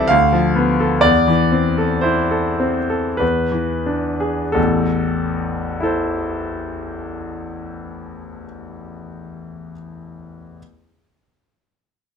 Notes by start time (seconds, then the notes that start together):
Already playing: C2 E3 C4 E4 A4 C5 D5 E5
0.08 D2 F5
0.32 F3
0.56 B3
0.80 A4
1.01 E2 D5
1.28 E3
1.52 C4
1.78 A4
2.01 E4 C5
2.31 A4
2.60 C4
2.90 A4
3.17 E2 B4
3.52 E3
3.86 D4
4.20 G#4
4.52 A1 E2 A4
5.81 E4 A4
5.85 C5